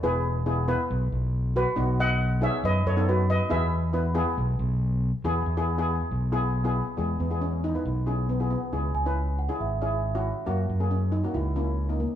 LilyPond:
<<
  \new Staff \with { instrumentName = "Celesta" } { \time 4/4 \key e \major \tempo 4 = 138 r1 | r1 | r1 | r1 |
r1 | r8 gis''4 fis''8 e''8 e''4.~ | e''8 r2. r8 | }
  \new Staff \with { instrumentName = "Steel pan" } { \time 4/4 \key e \major <gis' b'>2 r4. <fis' b'>8~ | <fis' b'>8 <dis'' fis''>4 <cis'' e''>8 <b' dis''>8 <a' cis''>8 <fis' b'>8 <b' dis''>8 | <b' e''>2. r4 | r1 |
gis8 b8 cis'8 dis'4 cis'8 b8 b8~ | b4. r2 r8 | r4 cis'8 dis'8 e'8 cis'4 ais8 | }
  \new Staff \with { instrumentName = "Steel pan" } { \time 4/4 \key e \major <b e' gis'>8 r8 <b e' gis'>16 r16 <b e' b'>4~ <b e' b'>16 r4 r16 | <b dis' fis'>4 r8 <b dis' gis'>8. r8 <b dis' a'>8. r8 | <b e' gis'>8 r8 <b e' b'>16 r16 <b e' gis'>4~ <b e' gis'>16 r4 r16 | <b e' gis'>8 r16 <b e' gis'>16 r16 <b e' gis'>8. r8 <b e' gis'>8 r16 <b e' gis'>8 r16 |
<b e' gis'>8 r16 <b e' gis'>8 r8 <b e' b'>8 r16 <b e' gis'>8 r16 <b e' gis'>8 r16 | <cis' e' gis'>8 r16 <cis' e' b'>8 r8 <cis' e' gis'>8 r16 <cis' e' gis'>8 r16 <cis' e' fis'>8 r16 | <ais cis' fis'>8 r16 <ais cis' gis'>8 r8 <ais cis' fis'>8 r16 <ais cis' e'>8 r16 <ais cis' dis'>8 r16 | }
  \new Staff \with { instrumentName = "Fingered electric bass" } { \clef bass \time 4/4 \key e \major e,,2 b,,8 b,,4. | b,,2 fis,8 fis,4. | e,2 b,,8 b,,4. | e,8 e,4. b,,2 |
e,8 e,4. b,,2 | cis,8 cis,4. gis,,2 | fis,8 fis,4. cis,2 | }
>>